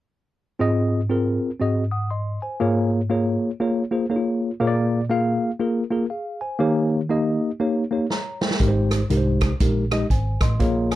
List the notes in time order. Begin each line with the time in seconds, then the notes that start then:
0.59 G#2 C4 F4 G#4 D#5
1.09 C4 F4 G#4 A#4
1.60 G#2 C4 F#4 G#4 D#5
1.91 F#5 D#6
2.10 D#5 C6
2.42 C5 G#5
2.60 G#2 A#3 F4 G#4 C#5
3.10 A#3 F4 G#4 C#5
3.60 A#3 F4 G#4 C#5
3.91 A#3 F4 G#4 C5
4.10 A#3 D#4 G#4 C#5
4.16 F4
4.60 A#2 A#3 F4 G#4 C#5
4.67 D5
5.10 A#3 F4 G#4 F5
5.59 A#3 F4 G#4 A#4
5.91 A#3 F4 G#4 A#4
6.10 G#4 F5
6.41 C5 G#5
6.59 D#3 A#3 D#4 G4 C#5
7.09 A#3 D#4 G4 D#5
7.60 A#3 D#4 G4 C#5
7.91 A#3 D#4 G4 C#5
8.10 C#5 A#5, snare
8.41 A#4 G5, snare
8.51 snare
8.60 G#1 G#2 G#3 D#4 G4 A#4, kick, closed hi-hat
8.68 C5
8.91 cross-stick, closed hi-hat
9.10 C2 G#3 D#4 G4 A#4, closed hi-hat
9.17 C5
9.41 kick, cross-stick, closed hi-hat
9.60 A#1 G#3 D#4 G4 A#4, kick, closed hi-hat
9.91 G#3 D#4 G4 D#5, cross-stick, closed hi-hat
10.10 G#1 C5 G#5, kick, closed hi-hat
10.41 A1 D#5 C6, kick, cross-stick, closed hi-hat
10.60 A#2 A#3 F4 G#4 C#5, kick, closed hi-hat
10.91 G#5, cross-stick, closed hi-hat